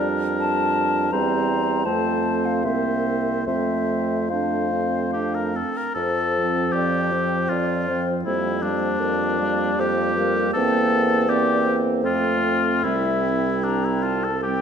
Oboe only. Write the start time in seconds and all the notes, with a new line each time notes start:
Already playing: A#4
1.13 C5
1.86 C5
2.65 C5
3.47 C5
4.30 C5
5.13 G4
5.35 A#4
5.56 A4
5.77 A#4
5.95 A4
6.72 G4
7.49 F4
8.25 E4
8.63 D4
9.80 G4
10.53 A4
11.29 G4
12.05 F4
12.84 E4
13.64 D4
13.85 E4
14.03 F4
14.24 A4
14.43 G4